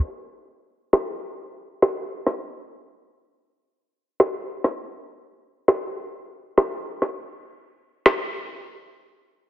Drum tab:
SD |------o-----o--o|------------o--o|------o-----o--o|------o---------|